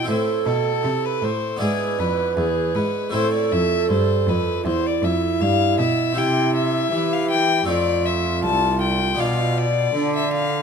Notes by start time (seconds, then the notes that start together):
0.03 C4 E4
0.08 A2 A4 C5
0.46 B2 A4
0.83 C3
1.05 B4
1.21 A2 C5
1.56 G#2 B3 D4 E4
1.61 G#2 G#4 B4
1.99 F2 B4
2.37 E2 G#4
2.74 G#2 B4
3.09 A2 A3 C4 E4 C5
3.14 A2 A4
3.34 D5
3.52 F2 E5
3.89 G2 C5
4.27 F2 B4
4.64 E2 E4 C5
4.86 D5
5.02 F2 E5
5.40 G2 F5
5.78 B2 E5
6.13 C3 C4 E4
6.18 G5
6.55 E5
6.91 E3 G4
7.13 F5
7.31 G5
7.63 F2 A3 C4 F4
7.68 F2 D5
8.06 E5
8.43 C2 A5
8.81 G5
9.15 B3 D4 F4
9.19 B2 F5
9.58 D5
9.94 D3 D4
10.16 E5
10.33 F5